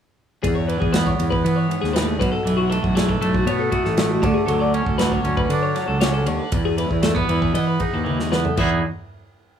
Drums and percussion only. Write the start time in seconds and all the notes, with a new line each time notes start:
0.44 kick, ride
0.69 ride
0.82 kick
0.94 snare, ride
1.07 kick
1.20 ride
1.32 kick
1.46 ride
1.71 ride
1.84 snare
1.96 snare, ride
2.21 kick, ride
2.47 ride
2.72 ride
2.84 kick
2.97 snare, ride
3.09 kick
3.22 ride
3.34 kick
3.47 ride
3.72 kick, ride
3.85 snare
3.97 snare, ride
4.23 kick, ride
4.48 ride
4.74 ride
4.86 kick
4.99 snare, ride
5.12 kick
5.25 ride
5.37 kick
5.50 ride
5.76 snare, ride
6.01 snare, ride
6.26 ride
6.52 kick, ride
6.78 ride
6.91 kick
7.03 snare, ride
7.16 kick
7.29 ride
7.42 kick
7.55 ride
7.80 kick, ride
8.06 high tom
8.20 snare
8.32 snare
8.45 floor tom
8.57 kick, crash